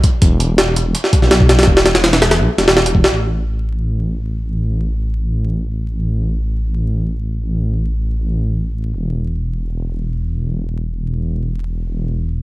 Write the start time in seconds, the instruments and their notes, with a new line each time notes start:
0.04 kick, closed hi-hat
0.22 detuned saw bass E1, kick, closed hi-hat
0.40 closed hi-hat
0.58 snare, closed hi-hat
0.76 closed hi-hat
0.95 closed hi-hat
1.04 snare
1.13 kick, closed hi-hat
1.22 detuned saw bass B1, snare
1.31 snare, closed hi-hat
1.40 kick
1.49 snare, closed hi-hat
1.59 snare, closed hi-hat
1.63 snare, closed hi-hat
1.67 detuned saw bass E1, kick
1.77 snare
1.86 snare, closed hi-hat
1.95 snare, closed hi-hat
2.04 snare, closed hi-hat
2.13 snare, closed hi-hat
2.22 snare, closed hi-hat
2.31 snare, closed hi-hat
2.40 detuned saw bass B1
2.58 detuned saw bass E1, snare, closed hi-hat
2.68 snare
2.77 snare
2.86 closed hi-hat
2.95 detuned saw bass E1, kick
3.04 snare
3.13 detuned saw bass A1
8.94 detuned saw bass E1